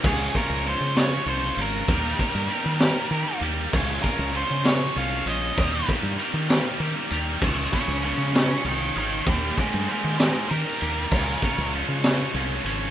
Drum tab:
CC |x-----|------|x-----|------|
RD |-xxxxx|xxxxxx|-xxxxx|xxxxxx|
SD |---o--|---o--|---o--|---o--|
BD |oo----|oo----|oo----|oo----|

CC |x-----|------|x-----|
RD |-xxxxx|xxxxxx|-xxxxx|
SD |---o--|---o--|---o--|
BD |oo----|oo----|oo----|